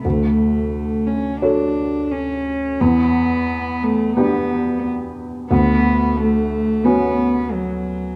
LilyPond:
<<
  \new Staff \with { instrumentName = "Felt piano" } { \time 4/4 \key d \major \tempo 4 = 88 d,2 <fis' a' cis''>2 | e,2 <b d' g'>2 | d,2 <b cis' fis'>2 | }
  \new Staff \with { instrumentName = "Cello" } { \time 4/4 \key d \major a4. cis'8 d'4 cis'4 | b4. a8 b4 r4 | b4 a4 b4 fis4 | }
>>